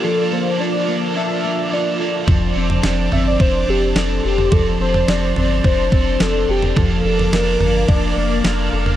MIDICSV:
0, 0, Header, 1, 7, 480
1, 0, Start_track
1, 0, Key_signature, -1, "major"
1, 0, Tempo, 560748
1, 31, Time_signature, 4, 2, 24, 8
1, 7672, End_track
2, 0, Start_track
2, 0, Title_t, "Analog synth pad"
2, 0, Program_c, 0, 89
2, 0, Note_on_c, 0, 58, 65
2, 0, Note_on_c, 0, 65, 75
2, 0, Note_on_c, 0, 74, 64
2, 0, Note_on_c, 0, 86, 77
2, 30, Note_on_c, 0, 81, 72
2, 1915, Note_off_c, 0, 86, 0
2, 1919, Note_off_c, 0, 65, 0
2, 1920, Note_off_c, 0, 58, 0
2, 1931, Note_off_c, 0, 81, 0
2, 1943, Note_on_c, 0, 81, 68
2, 1944, Note_on_c, 0, 72, 80
2, 1947, Note_on_c, 0, 86, 81
2, 3850, Note_off_c, 0, 86, 0
2, 3874, Note_on_c, 0, 84, 86
2, 5753, Note_off_c, 0, 72, 0
2, 5753, Note_off_c, 0, 81, 0
2, 5756, Note_off_c, 0, 74, 0
2, 5773, Note_off_c, 0, 84, 0
2, 5788, Note_on_c, 0, 86, 84
2, 5790, Note_on_c, 0, 58, 80
2, 5790, Note_on_c, 0, 77, 75
2, 5791, Note_on_c, 0, 81, 71
2, 7672, Note_off_c, 0, 58, 0
2, 7672, Note_off_c, 0, 77, 0
2, 7672, Note_off_c, 0, 81, 0
2, 7672, Note_off_c, 0, 86, 0
2, 7672, End_track
3, 0, Start_track
3, 0, Title_t, "Soft synth lead"
3, 0, Program_c, 1, 80
3, 39, Note_on_c, 1, 69, 103
3, 283, Note_on_c, 1, 72, 96
3, 296, Note_off_c, 1, 69, 0
3, 521, Note_on_c, 1, 74, 88
3, 534, Note_off_c, 1, 72, 0
3, 993, Note_off_c, 1, 74, 0
3, 999, Note_on_c, 1, 76, 103
3, 1481, Note_on_c, 1, 74, 86
3, 1494, Note_off_c, 1, 76, 0
3, 1836, Note_off_c, 1, 74, 0
3, 2674, Note_on_c, 1, 76, 93
3, 2784, Note_off_c, 1, 76, 0
3, 2803, Note_on_c, 1, 74, 95
3, 2917, Note_on_c, 1, 72, 102
3, 2929, Note_off_c, 1, 74, 0
3, 3164, Note_on_c, 1, 67, 88
3, 3177, Note_off_c, 1, 72, 0
3, 3399, Note_on_c, 1, 69, 84
3, 3412, Note_off_c, 1, 67, 0
3, 3638, Note_on_c, 1, 67, 97
3, 3651, Note_off_c, 1, 69, 0
3, 3876, Note_on_c, 1, 69, 104
3, 3889, Note_off_c, 1, 67, 0
3, 4113, Note_off_c, 1, 69, 0
3, 4119, Note_on_c, 1, 72, 95
3, 4357, Note_on_c, 1, 74, 93
3, 4370, Note_off_c, 1, 72, 0
3, 4837, Note_on_c, 1, 72, 96
3, 4850, Note_off_c, 1, 74, 0
3, 5320, Note_on_c, 1, 69, 89
3, 5332, Note_off_c, 1, 72, 0
3, 5567, Note_on_c, 1, 67, 91
3, 5580, Note_off_c, 1, 69, 0
3, 5795, Note_on_c, 1, 69, 99
3, 5808, Note_off_c, 1, 67, 0
3, 6270, Note_on_c, 1, 70, 88
3, 6283, Note_off_c, 1, 69, 0
3, 6743, Note_off_c, 1, 70, 0
3, 6748, Note_on_c, 1, 74, 91
3, 7196, Note_off_c, 1, 74, 0
3, 7672, End_track
4, 0, Start_track
4, 0, Title_t, "Clean electric guitar"
4, 0, Program_c, 2, 27
4, 0, Note_on_c, 2, 58, 55
4, 0, Note_on_c, 2, 62, 57
4, 0, Note_on_c, 2, 69, 68
4, 260, Note_off_c, 2, 58, 0
4, 506, Note_off_c, 2, 62, 0
4, 1710, Note_off_c, 2, 69, 0
4, 5555, Note_on_c, 2, 67, 65
4, 5670, Note_off_c, 2, 67, 0
4, 5670, Note_on_c, 2, 69, 50
4, 5838, Note_off_c, 2, 69, 0
4, 7672, End_track
5, 0, Start_track
5, 0, Title_t, "Overdriven electric guitar"
5, 0, Program_c, 3, 29
5, 25, Note_on_c, 3, 53, 66
5, 32, Note_on_c, 3, 58, 65
5, 37, Note_on_c, 3, 62, 73
5, 43, Note_on_c, 3, 69, 72
5, 250, Note_off_c, 3, 69, 0
5, 260, Note_on_c, 3, 69, 54
5, 261, Note_off_c, 3, 62, 0
5, 268, Note_off_c, 3, 53, 0
5, 271, Note_off_c, 3, 58, 0
5, 271, Note_on_c, 3, 62, 44
5, 286, Note_on_c, 3, 58, 40
5, 499, Note_on_c, 3, 53, 51
5, 500, Note_off_c, 3, 58, 0
5, 505, Note_off_c, 3, 69, 0
5, 508, Note_off_c, 3, 62, 0
5, 510, Note_on_c, 3, 58, 50
5, 518, Note_on_c, 3, 62, 57
5, 526, Note_on_c, 3, 69, 57
5, 731, Note_off_c, 3, 69, 0
5, 742, Note_on_c, 3, 69, 53
5, 745, Note_off_c, 3, 53, 0
5, 745, Note_off_c, 3, 62, 0
5, 751, Note_off_c, 3, 58, 0
5, 756, Note_on_c, 3, 62, 46
5, 767, Note_on_c, 3, 58, 34
5, 975, Note_off_c, 3, 58, 0
5, 981, Note_on_c, 3, 53, 72
5, 986, Note_off_c, 3, 69, 0
5, 986, Note_on_c, 3, 58, 89
5, 987, Note_off_c, 3, 62, 0
5, 998, Note_on_c, 3, 62, 86
5, 1001, Note_on_c, 3, 69, 81
5, 1206, Note_off_c, 3, 69, 0
5, 1216, Note_on_c, 3, 69, 41
5, 1220, Note_off_c, 3, 62, 0
5, 1226, Note_off_c, 3, 53, 0
5, 1228, Note_off_c, 3, 58, 0
5, 1230, Note_on_c, 3, 62, 42
5, 1247, Note_on_c, 3, 58, 32
5, 1453, Note_off_c, 3, 58, 0
5, 1453, Note_on_c, 3, 53, 60
5, 1459, Note_off_c, 3, 62, 0
5, 1463, Note_off_c, 3, 69, 0
5, 1463, Note_on_c, 3, 58, 60
5, 1469, Note_on_c, 3, 62, 59
5, 1476, Note_on_c, 3, 69, 64
5, 1684, Note_off_c, 3, 69, 0
5, 1694, Note_on_c, 3, 69, 44
5, 1702, Note_off_c, 3, 53, 0
5, 1706, Note_off_c, 3, 62, 0
5, 1707, Note_off_c, 3, 58, 0
5, 1716, Note_on_c, 3, 62, 42
5, 1722, Note_on_c, 3, 58, 38
5, 1933, Note_on_c, 3, 53, 75
5, 1938, Note_off_c, 3, 58, 0
5, 1938, Note_off_c, 3, 62, 0
5, 1941, Note_off_c, 3, 69, 0
5, 1941, Note_on_c, 3, 60, 75
5, 1949, Note_on_c, 3, 62, 77
5, 1951, Note_on_c, 3, 69, 79
5, 2161, Note_off_c, 3, 69, 0
5, 2171, Note_on_c, 3, 69, 57
5, 2179, Note_off_c, 3, 62, 0
5, 2182, Note_off_c, 3, 53, 0
5, 2186, Note_off_c, 3, 60, 0
5, 2190, Note_on_c, 3, 62, 46
5, 2198, Note_on_c, 3, 60, 46
5, 2415, Note_off_c, 3, 60, 0
5, 2415, Note_on_c, 3, 53, 58
5, 2421, Note_off_c, 3, 69, 0
5, 2425, Note_on_c, 3, 60, 54
5, 2426, Note_off_c, 3, 62, 0
5, 2436, Note_on_c, 3, 62, 60
5, 2446, Note_on_c, 3, 69, 56
5, 2654, Note_off_c, 3, 69, 0
5, 2663, Note_off_c, 3, 53, 0
5, 2664, Note_on_c, 3, 69, 49
5, 2668, Note_off_c, 3, 60, 0
5, 2672, Note_off_c, 3, 62, 0
5, 2682, Note_on_c, 3, 62, 44
5, 2697, Note_on_c, 3, 60, 42
5, 2905, Note_on_c, 3, 53, 80
5, 2906, Note_off_c, 3, 60, 0
5, 2907, Note_off_c, 3, 69, 0
5, 2910, Note_off_c, 3, 62, 0
5, 2916, Note_on_c, 3, 60, 80
5, 2920, Note_on_c, 3, 62, 88
5, 2926, Note_on_c, 3, 69, 86
5, 3137, Note_off_c, 3, 69, 0
5, 3147, Note_on_c, 3, 69, 40
5, 3148, Note_off_c, 3, 53, 0
5, 3153, Note_off_c, 3, 62, 0
5, 3154, Note_off_c, 3, 60, 0
5, 3163, Note_on_c, 3, 62, 43
5, 3179, Note_on_c, 3, 60, 40
5, 3388, Note_off_c, 3, 60, 0
5, 3389, Note_off_c, 3, 69, 0
5, 3389, Note_on_c, 3, 53, 54
5, 3397, Note_off_c, 3, 62, 0
5, 3399, Note_on_c, 3, 60, 58
5, 3409, Note_on_c, 3, 62, 62
5, 3415, Note_on_c, 3, 69, 63
5, 3610, Note_off_c, 3, 69, 0
5, 3620, Note_on_c, 3, 69, 44
5, 3627, Note_off_c, 3, 62, 0
5, 3630, Note_off_c, 3, 53, 0
5, 3635, Note_off_c, 3, 60, 0
5, 3637, Note_on_c, 3, 62, 41
5, 3648, Note_on_c, 3, 60, 38
5, 3858, Note_off_c, 3, 60, 0
5, 3862, Note_on_c, 3, 53, 64
5, 3866, Note_off_c, 3, 62, 0
5, 3866, Note_off_c, 3, 69, 0
5, 3868, Note_on_c, 3, 60, 65
5, 3876, Note_on_c, 3, 62, 70
5, 3880, Note_on_c, 3, 69, 72
5, 4085, Note_off_c, 3, 69, 0
5, 4095, Note_on_c, 3, 69, 47
5, 4105, Note_off_c, 3, 62, 0
5, 4106, Note_off_c, 3, 53, 0
5, 4110, Note_off_c, 3, 60, 0
5, 4115, Note_on_c, 3, 62, 48
5, 4127, Note_on_c, 3, 60, 43
5, 4340, Note_on_c, 3, 53, 55
5, 4343, Note_off_c, 3, 60, 0
5, 4343, Note_off_c, 3, 69, 0
5, 4353, Note_off_c, 3, 62, 0
5, 4353, Note_on_c, 3, 60, 58
5, 4362, Note_on_c, 3, 62, 53
5, 4371, Note_on_c, 3, 69, 55
5, 4579, Note_off_c, 3, 69, 0
5, 4586, Note_off_c, 3, 53, 0
5, 4589, Note_off_c, 3, 62, 0
5, 4589, Note_on_c, 3, 69, 52
5, 4592, Note_off_c, 3, 60, 0
5, 4599, Note_on_c, 3, 62, 51
5, 4615, Note_on_c, 3, 60, 40
5, 4829, Note_off_c, 3, 60, 0
5, 4830, Note_off_c, 3, 69, 0
5, 4831, Note_on_c, 3, 53, 80
5, 4835, Note_off_c, 3, 62, 0
5, 4840, Note_on_c, 3, 60, 85
5, 4845, Note_on_c, 3, 62, 86
5, 4852, Note_on_c, 3, 69, 84
5, 5052, Note_off_c, 3, 69, 0
5, 5062, Note_on_c, 3, 69, 43
5, 5071, Note_off_c, 3, 53, 0
5, 5073, Note_off_c, 3, 62, 0
5, 5075, Note_off_c, 3, 60, 0
5, 5083, Note_on_c, 3, 62, 44
5, 5092, Note_on_c, 3, 60, 35
5, 5302, Note_on_c, 3, 53, 60
5, 5306, Note_off_c, 3, 60, 0
5, 5307, Note_off_c, 3, 69, 0
5, 5313, Note_off_c, 3, 62, 0
5, 5316, Note_on_c, 3, 60, 62
5, 5323, Note_on_c, 3, 62, 58
5, 5331, Note_on_c, 3, 69, 66
5, 5540, Note_off_c, 3, 69, 0
5, 5546, Note_off_c, 3, 53, 0
5, 5550, Note_on_c, 3, 69, 44
5, 5553, Note_off_c, 3, 60, 0
5, 5553, Note_off_c, 3, 62, 0
5, 5564, Note_on_c, 3, 62, 39
5, 5577, Note_on_c, 3, 60, 40
5, 5784, Note_off_c, 3, 62, 0
5, 5784, Note_on_c, 3, 53, 72
5, 5786, Note_off_c, 3, 60, 0
5, 5790, Note_off_c, 3, 69, 0
5, 5790, Note_on_c, 3, 58, 69
5, 5794, Note_on_c, 3, 62, 74
5, 5802, Note_on_c, 3, 69, 77
5, 6016, Note_off_c, 3, 69, 0
5, 6026, Note_on_c, 3, 69, 48
5, 6027, Note_off_c, 3, 53, 0
5, 6030, Note_off_c, 3, 58, 0
5, 6032, Note_off_c, 3, 62, 0
5, 6042, Note_on_c, 3, 62, 46
5, 6057, Note_on_c, 3, 58, 39
5, 6262, Note_on_c, 3, 53, 49
5, 6264, Note_off_c, 3, 58, 0
5, 6268, Note_off_c, 3, 69, 0
5, 6274, Note_off_c, 3, 62, 0
5, 6274, Note_on_c, 3, 58, 57
5, 6284, Note_on_c, 3, 62, 61
5, 6289, Note_on_c, 3, 69, 60
5, 6501, Note_off_c, 3, 69, 0
5, 6506, Note_off_c, 3, 53, 0
5, 6511, Note_on_c, 3, 69, 51
5, 6513, Note_off_c, 3, 58, 0
5, 6518, Note_off_c, 3, 62, 0
5, 6530, Note_on_c, 3, 62, 46
5, 6539, Note_on_c, 3, 58, 41
5, 6741, Note_off_c, 3, 58, 0
5, 6743, Note_on_c, 3, 53, 77
5, 6748, Note_off_c, 3, 62, 0
5, 6751, Note_off_c, 3, 69, 0
5, 6751, Note_on_c, 3, 58, 76
5, 6758, Note_on_c, 3, 62, 85
5, 6763, Note_on_c, 3, 69, 89
5, 6971, Note_off_c, 3, 69, 0
5, 6981, Note_on_c, 3, 69, 46
5, 6985, Note_off_c, 3, 62, 0
5, 6987, Note_off_c, 3, 53, 0
5, 6991, Note_off_c, 3, 58, 0
5, 6996, Note_on_c, 3, 62, 45
5, 7006, Note_on_c, 3, 58, 37
5, 7225, Note_off_c, 3, 58, 0
5, 7225, Note_on_c, 3, 53, 51
5, 7226, Note_off_c, 3, 69, 0
5, 7230, Note_off_c, 3, 62, 0
5, 7236, Note_on_c, 3, 58, 58
5, 7240, Note_on_c, 3, 62, 56
5, 7253, Note_on_c, 3, 69, 62
5, 7454, Note_off_c, 3, 69, 0
5, 7464, Note_on_c, 3, 69, 53
5, 7468, Note_off_c, 3, 53, 0
5, 7472, Note_off_c, 3, 62, 0
5, 7473, Note_off_c, 3, 58, 0
5, 7482, Note_on_c, 3, 62, 46
5, 7494, Note_on_c, 3, 58, 42
5, 7672, Note_off_c, 3, 58, 0
5, 7672, Note_off_c, 3, 62, 0
5, 7672, Note_off_c, 3, 69, 0
5, 7672, End_track
6, 0, Start_track
6, 0, Title_t, "Analog synth bass"
6, 0, Program_c, 4, 38
6, 1946, Note_on_c, 4, 29, 98
6, 2159, Note_off_c, 4, 29, 0
6, 2189, Note_on_c, 4, 29, 88
6, 2401, Note_off_c, 4, 29, 0
6, 2433, Note_on_c, 4, 29, 96
6, 2643, Note_off_c, 4, 29, 0
6, 2677, Note_on_c, 4, 31, 87
6, 2886, Note_off_c, 4, 31, 0
6, 2909, Note_on_c, 4, 29, 93
6, 3121, Note_off_c, 4, 29, 0
6, 3152, Note_on_c, 4, 29, 95
6, 3363, Note_off_c, 4, 29, 0
6, 3383, Note_on_c, 4, 29, 102
6, 3598, Note_off_c, 4, 29, 0
6, 3636, Note_on_c, 4, 29, 102
6, 3845, Note_off_c, 4, 29, 0
6, 3869, Note_on_c, 4, 29, 77
6, 4081, Note_off_c, 4, 29, 0
6, 4108, Note_on_c, 4, 29, 88
6, 4320, Note_off_c, 4, 29, 0
6, 4349, Note_on_c, 4, 29, 88
6, 4561, Note_off_c, 4, 29, 0
6, 4590, Note_on_c, 4, 31, 91
6, 4802, Note_off_c, 4, 31, 0
6, 4832, Note_on_c, 4, 29, 96
6, 5043, Note_off_c, 4, 29, 0
6, 5067, Note_on_c, 4, 29, 91
6, 5280, Note_off_c, 4, 29, 0
6, 5310, Note_on_c, 4, 29, 95
6, 5522, Note_off_c, 4, 29, 0
6, 5552, Note_on_c, 4, 29, 104
6, 5763, Note_off_c, 4, 29, 0
6, 5791, Note_on_c, 4, 29, 96
6, 6002, Note_off_c, 4, 29, 0
6, 6028, Note_on_c, 4, 29, 99
6, 6241, Note_off_c, 4, 29, 0
6, 6264, Note_on_c, 4, 29, 87
6, 6478, Note_off_c, 4, 29, 0
6, 6505, Note_on_c, 4, 31, 92
6, 6719, Note_off_c, 4, 31, 0
6, 6751, Note_on_c, 4, 29, 103
6, 6962, Note_off_c, 4, 29, 0
6, 6991, Note_on_c, 4, 29, 97
6, 7202, Note_off_c, 4, 29, 0
6, 7229, Note_on_c, 4, 29, 95
6, 7441, Note_off_c, 4, 29, 0
6, 7472, Note_on_c, 4, 29, 107
6, 7672, Note_off_c, 4, 29, 0
6, 7672, End_track
7, 0, Start_track
7, 0, Title_t, "Drums"
7, 1949, Note_on_c, 9, 36, 102
7, 1949, Note_on_c, 9, 43, 90
7, 2035, Note_off_c, 9, 36, 0
7, 2035, Note_off_c, 9, 43, 0
7, 2310, Note_on_c, 9, 43, 65
7, 2396, Note_off_c, 9, 43, 0
7, 2426, Note_on_c, 9, 38, 102
7, 2512, Note_off_c, 9, 38, 0
7, 2671, Note_on_c, 9, 43, 58
7, 2757, Note_off_c, 9, 43, 0
7, 2909, Note_on_c, 9, 43, 56
7, 2910, Note_on_c, 9, 36, 85
7, 2995, Note_off_c, 9, 43, 0
7, 2996, Note_off_c, 9, 36, 0
7, 3388, Note_on_c, 9, 38, 102
7, 3474, Note_off_c, 9, 38, 0
7, 3752, Note_on_c, 9, 43, 55
7, 3837, Note_off_c, 9, 43, 0
7, 3868, Note_on_c, 9, 43, 92
7, 3871, Note_on_c, 9, 36, 83
7, 3954, Note_off_c, 9, 43, 0
7, 3956, Note_off_c, 9, 36, 0
7, 4232, Note_on_c, 9, 43, 68
7, 4317, Note_off_c, 9, 43, 0
7, 4352, Note_on_c, 9, 38, 114
7, 4437, Note_off_c, 9, 38, 0
7, 4591, Note_on_c, 9, 43, 59
7, 4677, Note_off_c, 9, 43, 0
7, 4830, Note_on_c, 9, 43, 57
7, 4832, Note_on_c, 9, 36, 82
7, 4916, Note_off_c, 9, 43, 0
7, 4917, Note_off_c, 9, 36, 0
7, 5069, Note_on_c, 9, 36, 92
7, 5154, Note_off_c, 9, 36, 0
7, 5310, Note_on_c, 9, 38, 105
7, 5395, Note_off_c, 9, 38, 0
7, 5671, Note_on_c, 9, 43, 59
7, 5757, Note_off_c, 9, 43, 0
7, 5791, Note_on_c, 9, 36, 89
7, 5795, Note_on_c, 9, 43, 99
7, 5877, Note_off_c, 9, 36, 0
7, 5881, Note_off_c, 9, 43, 0
7, 6158, Note_on_c, 9, 43, 59
7, 6244, Note_off_c, 9, 43, 0
7, 6275, Note_on_c, 9, 38, 105
7, 6360, Note_off_c, 9, 38, 0
7, 6510, Note_on_c, 9, 43, 60
7, 6596, Note_off_c, 9, 43, 0
7, 6749, Note_on_c, 9, 43, 58
7, 6751, Note_on_c, 9, 36, 86
7, 6835, Note_off_c, 9, 43, 0
7, 6836, Note_off_c, 9, 36, 0
7, 7229, Note_on_c, 9, 38, 104
7, 7315, Note_off_c, 9, 38, 0
7, 7585, Note_on_c, 9, 43, 61
7, 7671, Note_off_c, 9, 43, 0
7, 7672, End_track
0, 0, End_of_file